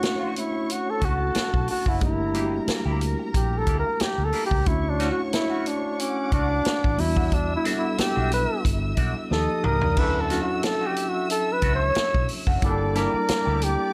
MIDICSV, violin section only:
0, 0, Header, 1, 2, 480
1, 0, Start_track
1, 0, Key_signature, 2, "major"
1, 0, Tempo, 662983
1, 1459, Time_signature, 4, 2, 24, 8
1, 10085, End_track
2, 0, Start_track
2, 0, Title_t, "Violin section"
2, 0, Program_c, 0, 48
2, 0, Note_on_c, 0, 73, 69
2, 0, Note_on_c, 0, 85, 80
2, 716, Note_off_c, 0, 73, 0
2, 717, Note_off_c, 0, 85, 0
2, 740, Note_on_c, 0, 69, 72
2, 740, Note_on_c, 0, 81, 77
2, 1445, Note_off_c, 0, 69, 0
2, 1445, Note_off_c, 0, 81, 0
2, 1454, Note_on_c, 0, 70, 74
2, 1456, Note_on_c, 0, 82, 74
2, 3347, Note_off_c, 0, 70, 0
2, 3348, Note_off_c, 0, 82, 0
2, 3378, Note_on_c, 0, 85, 80
2, 3379, Note_on_c, 0, 73, 67
2, 4319, Note_off_c, 0, 85, 0
2, 4320, Note_off_c, 0, 73, 0
2, 4333, Note_on_c, 0, 78, 75
2, 4336, Note_on_c, 0, 86, 86
2, 5042, Note_off_c, 0, 78, 0
2, 5043, Note_off_c, 0, 86, 0
2, 5055, Note_on_c, 0, 88, 94
2, 5056, Note_on_c, 0, 76, 82
2, 6708, Note_off_c, 0, 88, 0
2, 6709, Note_off_c, 0, 76, 0
2, 6740, Note_on_c, 0, 87, 87
2, 6741, Note_on_c, 0, 75, 76
2, 7210, Note_off_c, 0, 87, 0
2, 7211, Note_off_c, 0, 75, 0
2, 7217, Note_on_c, 0, 76, 73
2, 7218, Note_on_c, 0, 88, 90
2, 9110, Note_off_c, 0, 76, 0
2, 9110, Note_off_c, 0, 88, 0
2, 9131, Note_on_c, 0, 74, 75
2, 9134, Note_on_c, 0, 86, 79
2, 10085, Note_off_c, 0, 74, 0
2, 10085, Note_off_c, 0, 86, 0
2, 10085, End_track
0, 0, End_of_file